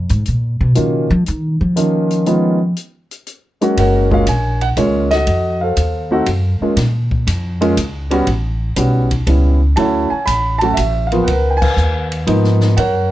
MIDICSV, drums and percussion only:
0, 0, Header, 1, 2, 480
1, 0, Start_track
1, 0, Key_signature, 6, "major"
1, 0, Tempo, 500835
1, 723, Time_signature, 3, 2, 24, 8
1, 12567, End_track
2, 0, Start_track
2, 0, Title_t, "Drums"
2, 89, Note_on_c, 9, 42, 44
2, 184, Note_off_c, 9, 42, 0
2, 244, Note_on_c, 9, 42, 42
2, 340, Note_off_c, 9, 42, 0
2, 721, Note_on_c, 9, 42, 51
2, 816, Note_off_c, 9, 42, 0
2, 1209, Note_on_c, 9, 42, 51
2, 1305, Note_off_c, 9, 42, 0
2, 1692, Note_on_c, 9, 42, 57
2, 1787, Note_off_c, 9, 42, 0
2, 2017, Note_on_c, 9, 42, 42
2, 2113, Note_off_c, 9, 42, 0
2, 2168, Note_on_c, 9, 42, 44
2, 2264, Note_off_c, 9, 42, 0
2, 2649, Note_on_c, 9, 42, 49
2, 2745, Note_off_c, 9, 42, 0
2, 2981, Note_on_c, 9, 42, 46
2, 3077, Note_off_c, 9, 42, 0
2, 3130, Note_on_c, 9, 42, 50
2, 3226, Note_off_c, 9, 42, 0
2, 3463, Note_on_c, 9, 42, 43
2, 3559, Note_off_c, 9, 42, 0
2, 3614, Note_on_c, 9, 36, 27
2, 3617, Note_on_c, 9, 51, 69
2, 3710, Note_off_c, 9, 36, 0
2, 3713, Note_off_c, 9, 51, 0
2, 3944, Note_on_c, 9, 36, 58
2, 4039, Note_off_c, 9, 36, 0
2, 4088, Note_on_c, 9, 44, 48
2, 4088, Note_on_c, 9, 51, 75
2, 4184, Note_off_c, 9, 44, 0
2, 4184, Note_off_c, 9, 51, 0
2, 4419, Note_on_c, 9, 51, 46
2, 4515, Note_off_c, 9, 51, 0
2, 4567, Note_on_c, 9, 44, 52
2, 4567, Note_on_c, 9, 51, 65
2, 4570, Note_on_c, 9, 36, 18
2, 4663, Note_off_c, 9, 44, 0
2, 4663, Note_off_c, 9, 51, 0
2, 4666, Note_off_c, 9, 36, 0
2, 4898, Note_on_c, 9, 51, 43
2, 4900, Note_on_c, 9, 38, 36
2, 4994, Note_off_c, 9, 51, 0
2, 4995, Note_off_c, 9, 38, 0
2, 5048, Note_on_c, 9, 51, 60
2, 5049, Note_on_c, 9, 36, 28
2, 5144, Note_off_c, 9, 51, 0
2, 5145, Note_off_c, 9, 36, 0
2, 5526, Note_on_c, 9, 44, 47
2, 5526, Note_on_c, 9, 51, 64
2, 5528, Note_on_c, 9, 36, 24
2, 5622, Note_off_c, 9, 44, 0
2, 5622, Note_off_c, 9, 51, 0
2, 5624, Note_off_c, 9, 36, 0
2, 6002, Note_on_c, 9, 51, 62
2, 6007, Note_on_c, 9, 36, 20
2, 6097, Note_off_c, 9, 51, 0
2, 6103, Note_off_c, 9, 36, 0
2, 6485, Note_on_c, 9, 51, 64
2, 6486, Note_on_c, 9, 36, 21
2, 6487, Note_on_c, 9, 38, 39
2, 6581, Note_off_c, 9, 51, 0
2, 6582, Note_off_c, 9, 36, 0
2, 6583, Note_off_c, 9, 38, 0
2, 6818, Note_on_c, 9, 36, 59
2, 6913, Note_off_c, 9, 36, 0
2, 6968, Note_on_c, 9, 36, 21
2, 6970, Note_on_c, 9, 44, 55
2, 6970, Note_on_c, 9, 51, 74
2, 7064, Note_off_c, 9, 36, 0
2, 7066, Note_off_c, 9, 44, 0
2, 7066, Note_off_c, 9, 51, 0
2, 7299, Note_on_c, 9, 51, 46
2, 7395, Note_off_c, 9, 51, 0
2, 7448, Note_on_c, 9, 36, 23
2, 7448, Note_on_c, 9, 44, 50
2, 7448, Note_on_c, 9, 51, 71
2, 7544, Note_off_c, 9, 36, 0
2, 7544, Note_off_c, 9, 44, 0
2, 7544, Note_off_c, 9, 51, 0
2, 7773, Note_on_c, 9, 51, 45
2, 7869, Note_off_c, 9, 51, 0
2, 7923, Note_on_c, 9, 51, 59
2, 7927, Note_on_c, 9, 36, 19
2, 8019, Note_off_c, 9, 51, 0
2, 8023, Note_off_c, 9, 36, 0
2, 8397, Note_on_c, 9, 44, 65
2, 8397, Note_on_c, 9, 51, 61
2, 8404, Note_on_c, 9, 36, 17
2, 8493, Note_off_c, 9, 44, 0
2, 8493, Note_off_c, 9, 51, 0
2, 8500, Note_off_c, 9, 36, 0
2, 8729, Note_on_c, 9, 51, 50
2, 8735, Note_on_c, 9, 36, 47
2, 8825, Note_off_c, 9, 51, 0
2, 8830, Note_off_c, 9, 36, 0
2, 8882, Note_on_c, 9, 51, 59
2, 8884, Note_on_c, 9, 36, 24
2, 8978, Note_off_c, 9, 51, 0
2, 8980, Note_off_c, 9, 36, 0
2, 9359, Note_on_c, 9, 51, 61
2, 9364, Note_on_c, 9, 36, 24
2, 9455, Note_off_c, 9, 51, 0
2, 9459, Note_off_c, 9, 36, 0
2, 9844, Note_on_c, 9, 44, 50
2, 9844, Note_on_c, 9, 51, 73
2, 9846, Note_on_c, 9, 36, 25
2, 9940, Note_off_c, 9, 44, 0
2, 9940, Note_off_c, 9, 51, 0
2, 9942, Note_off_c, 9, 36, 0
2, 10169, Note_on_c, 9, 51, 46
2, 10265, Note_off_c, 9, 51, 0
2, 10320, Note_on_c, 9, 44, 57
2, 10320, Note_on_c, 9, 51, 72
2, 10325, Note_on_c, 9, 36, 22
2, 10416, Note_off_c, 9, 44, 0
2, 10416, Note_off_c, 9, 51, 0
2, 10421, Note_off_c, 9, 36, 0
2, 10653, Note_on_c, 9, 51, 44
2, 10749, Note_off_c, 9, 51, 0
2, 10806, Note_on_c, 9, 36, 25
2, 10806, Note_on_c, 9, 51, 70
2, 10902, Note_off_c, 9, 36, 0
2, 10902, Note_off_c, 9, 51, 0
2, 11135, Note_on_c, 9, 49, 83
2, 11136, Note_on_c, 9, 36, 91
2, 11231, Note_off_c, 9, 49, 0
2, 11232, Note_off_c, 9, 36, 0
2, 11283, Note_on_c, 9, 44, 55
2, 11379, Note_off_c, 9, 44, 0
2, 11612, Note_on_c, 9, 51, 49
2, 11708, Note_off_c, 9, 51, 0
2, 11762, Note_on_c, 9, 36, 22
2, 11762, Note_on_c, 9, 51, 58
2, 11858, Note_off_c, 9, 36, 0
2, 11858, Note_off_c, 9, 51, 0
2, 11923, Note_on_c, 9, 38, 26
2, 12019, Note_off_c, 9, 38, 0
2, 12081, Note_on_c, 9, 38, 44
2, 12177, Note_off_c, 9, 38, 0
2, 12242, Note_on_c, 9, 36, 24
2, 12242, Note_on_c, 9, 51, 67
2, 12338, Note_off_c, 9, 36, 0
2, 12338, Note_off_c, 9, 51, 0
2, 12567, End_track
0, 0, End_of_file